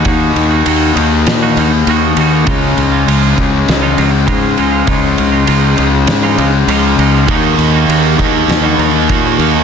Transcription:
<<
  \new Staff \with { instrumentName = "Clean electric guitar" } { \time 4/4 \key cis \mixolydian \tempo 4 = 100 <dis ais dis' fis'>8. <ais dis' fis'>16 <dis ais dis' fis'>4~ <dis ais dis' fis'>16 <ais dis' fis'>16 <dis ais dis' fis'>8 <dis ais dis' fis'>8 <dis ais dis' fis'>16 <ais dis' fis'>16 | <cis eis gis dis' eis'>8. <gis dis' eis'>16 <cis eis gis dis' eis'>4~ <cis eis gis dis' eis'>16 <gis dis' eis'>16 <eis gis dis' eis'>8 <cis eis gis dis' eis'>8 <eis gis dis' eis'>16 <gis dis' eis'>16 | <cis eis gis dis' eis'>8. <gis dis' eis'>16 <cis eis gis dis' eis'>4~ <cis eis gis dis' eis'>16 <gis dis' eis'>16 <eis gis dis' eis'>8 <cis eis gis dis' eis'>8 <eis gis dis' eis'>16 <gis dis' eis'>16 | <dis ais dis' fis'>8. <ais dis' fis'>16 <dis ais dis' fis'>4~ <dis ais dis' fis'>16 <ais dis' fis'>16 <dis ais dis' fis'>8 <dis ais dis' fis'>8 <dis ais dis' fis'>16 <ais dis' fis'>16 | }
  \new Staff \with { instrumentName = "Distorted electric guitar" } { \time 4/4 \key cis \mixolydian r1 | r1 | r1 | <dis ais dis'>4. <dis ais dis'>4. <dis ais dis'>4 | }
  \new Staff \with { instrumentName = "Distorted electric guitar" } { \time 4/4 \key cis \mixolydian <dis ais dis'>4. <dis ais dis'>2~ <dis ais dis'>8 | <cis gis cis'>4. <cis gis cis'>2~ <cis gis cis'>8 | <cis gis cis'>4. <cis gis cis'>2~ <cis gis cis'>8 | <dis ais dis'>4. <dis ais dis'>2~ <dis ais dis'>8 | }
  \new Staff \with { instrumentName = "Fingered electric bass" } { \clef bass \time 4/4 \key cis \mixolydian dis,8 dis,8 dis,8 dis,8 ais,8 dis,8 dis,8 dis,8 | cis,8 cis,8 cis,8 cis,8 cis,8 cis,8 gis,8 cis,8 | cis,8 cis,8 cis,8 cis,8 gis,8 cis,8 cis,8 cis,8 | dis,8 dis,8 dis,8 dis,8 dis,8 dis,8 ais,8 dis,8 | }
  \new DrumStaff \with { instrumentName = "Drums" } \drummode { \time 4/4 <bd cymr>8 cymr8 cymr8 cymr8 <cymr sn>8 cymr8 cymr8 cymr8 | <bd cymr>8 cymr8 cymr8 <bd cymr>8 <cymr sn>8 cymr8 <bd cymr>8 cymr8 | <bd cymr>8 cymr8 cymr8 cymr8 <cymr sn>8 cymr8 cymr8 cymr8 | <bd cymr>8 cymr8 cymr8 <bd cymr>8 <cymr sn>8 cymr8 <bd cymr>8 cymr8 | }
>>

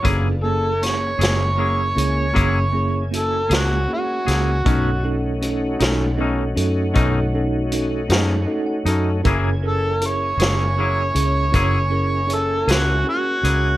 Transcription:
<<
  \new Staff \with { instrumentName = "Harmonica" } { \time 12/8 \key fis \mixolydian \tempo 4. = 52 r8 a'8 cis''2. a'8 fis'8 fis'4~ | fis'4 r1 r4 | r8 a'8 cis''2. a'8 fis'8 fis'4 | }
  \new Staff \with { instrumentName = "Tine electric piano" } { \time 12/8 \key fis \mixolydian << { r1. | r1 r4 dis''16 fis''16 a''8 | r1. | } \\ { <ais cis' e' gis'>8 <ais cis' e' gis'>8 <ais cis' e' gis'>8 <ais cis' e' gis'>8 <ais cis' e' gis'>8 <ais cis' e' gis'>8 <ais cis' e' gis'>8 <ais cis' e' gis'>8 <ais cis' e' fis'>8 <ais cis' e' gis'>8 <ais cis' e' gis'>8 <ais cis' e' gis'>8 | <cis' dis' fis' a'>8 <cis' dis' fis' a'>8 <cis' dis' fis' a'>8 <cis' dis' fis' a'>8 <cis' dis' fis' a'>8 <cis' dis' fis' a'>8 <cis' dis' fis' a'>8 <cis' dis' fis' a'>8 <cis' dis' fis' a'>8 <cis' dis' fis' gis'>8 <cis' dis' fis' a'>8 <cis' dis' fis' a'>8 | <cis' e' gis' ais'>8 <cis' e' gis' ais'>8 <cis' e' gis' ais'>8 <cis' e' gis' ais'>8 <cis' e' gis' cis''>8 <cis' e' gis' cis''>8 <cis' e' gis' ais'>8 <cis' e' gis' ais'>8 <cis' e' gis' cis''>8 <cis' e' gis' ais'>8 <cis' e' gis' ais'>8 <cis' e' gis' cis''>8 | } >> }
  \new Staff \with { instrumentName = "Tonewheel organ" } { \time 12/8 \key fis \mixolydian <b d' eis' a'>8 <ais cis' e' gis''>1~ <ais cis' e' gis''>4. | <a cis' dis' fis'>1. | <ais cis' e' gis''>1. | }
  \new Staff \with { instrumentName = "Clean electric guitar" } { \time 12/8 \key fis \mixolydian <fis ais e' gis'>8 r4 <ais e' gis'>8 <fis ais e' gis'>8 r8 <fis ais e' gis'>8 r4 <ais e' gis'>8 r8 <ais e' gis'>8 | <b, a cis' dis'>8 r4 <a cis' dis'>8 <b, a cis' dis'>8 r8 <b, a cis' dis'>8 r4 <a cis' dis'>8 r8 <a cis' dis'>8 | <fis ais e' gis'>8 r4 <ais e' gis'>8 <fis ais e' gis'>8 r8 <fis ais e' gis'>8 r4 <ais e' gis'>8 r8 <ais e' gis'>8 | }
  \new Staff \with { instrumentName = "Fingered electric bass" } { \clef bass \time 12/8 \key fis \mixolydian fis,,4. fis,,4 cis,8 fis,,4. cis,8 r8 cis,8 | b,,4. b,,4 fis,8 b,,4. fis,8 r8 fis,8 | fis,,4. fis,,4 cis,8 fis,,4. cis,8 r8 cis,8 | }
  \new DrumStaff \with { instrumentName = "Drums" } \drummode { \time 12/8 <hh bd>4 <hh sn>8 <hh sn>4 hh8 <hh bd>4 hh8 <hh sn>4 <hh sn>8 | <hh bd>4 hh8 <hh sn>4 hh8 <hh bd>4 hh8 <hh sn>4 hh8 | <hh bd>4 hh8 <hh sn>4 hh8 <hh bd>4 hh8 <hh sn>4 hh8 | }
>>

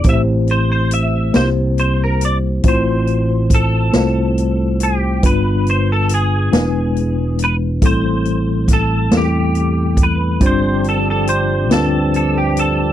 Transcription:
<<
  \new Staff \with { instrumentName = "Clean electric guitar" } { \time 6/8 \key a \minor \tempo 4. = 46 e''8 c''16 c''16 e''8 c''8 c''16 bes'16 d''8 | c''4 a'4. g'8 | b'8 c''16 a'16 aes'4. b'8 | c''4 a'8 g'4 b'8 |
c''8 a'16 a'16 c''8 a'8 a'16 g'16 a'8 | }
  \new Staff \with { instrumentName = "Tine electric piano" } { \time 6/8 \key a \minor <a c' e' g' c''>4 r8 <bes c' d' e' g' c''>4 r8 | <a c' e' f' c''>4 r8 <a c' e' f' c''>4 r8 | <g b d' f' b'>4 r8 <gis b d' e' b'>4 r8 | <g a c' e' a'>4 r8 <g a c' e' a'>4 r8 |
<g c' d' f' c''>4 r8 <g c' d' f' b'>4 r8 | }
  \new Staff \with { instrumentName = "Tine electric piano" } { \clef bass \time 6/8 \key a \minor a,4. c4. | a,4. r4. | g,4. e4. | a,4. r4. |
g,4. r4. | }
  \new Staff \with { instrumentName = "Tonewheel organ" } { \time 6/8 \key a \minor r2. | r2. | r2. | r2. |
<f g c' d' g'>2. | }
  \new Staff \with { instrumentName = "Fingered electric bass" } { \clef bass \time 6/8 \key a \minor a,,4. c,4. | a,,4. c,4. | g,,4. e,,4. | a,,4. e,4. |
g,,4. d,4. | }
  \new DrumStaff \with { instrumentName = "Drums" } \drummode { \time 6/8 <hh bd>8 hh8 hh8 <hh sn>8 hh8 hh8 | <hh bd>8 hh8 <hh bd>8 <hh sn>8 hh8 hh8 | <hh bd>8 hh8 hh8 <hh sn>8 hh8 hh8 | <hh bd>8 hh8 <hh bd sn>8 <hh sn>8 hh8 <hh bd>8 |
<hh bd>8 hh8 hh8 <hh sn>8 hh8 hh8 | }
>>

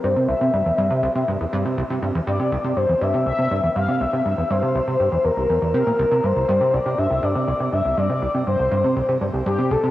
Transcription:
<<
  \new Staff \with { instrumentName = "Analog synth lead" } { \time 4/4 \key c \mixolydian \tempo 4 = 121 c''8 e''2. r8 | r8 d''4 c''8 e''8 e''4 f''8 | e''4 c''4. bes'4 bes'8~ | bes'8 c''4 d''8 e''8 d''4 e''8 |
d''4 c''4. r8 g'8 a'8 | }
  \new Staff \with { instrumentName = "Analog synth bass" } { \clef bass \time 4/4 \key c \mixolydian g,16 c16 c,16 c16 g,16 e,16 g,16 c16 c,16 c16 g,16 e,16 g,16 c16 c,16 c16 | g,16 e,16 g,16 c16 c,16 c16 g,16 e,16 g,16 c16 c,16 c16 g,16 e,16 g,16 c16 | c,16 c16 g,16 e,16 g,16 c16 c,16 c16 g,16 e,16 e,16 c,16 e,16 e,16 c16 bes,16 | c,16 c16 g,16 c,16 g,16 c16 c,16 c16 g,16 c,16 g,16 c16 c,16 c16 g,16 c,16 |
g,16 c16 c,16 c16 g,16 c,16 g,16 c16 c,16 c16 g,16 c,16 g,16 c16 c,16 c16 | }
>>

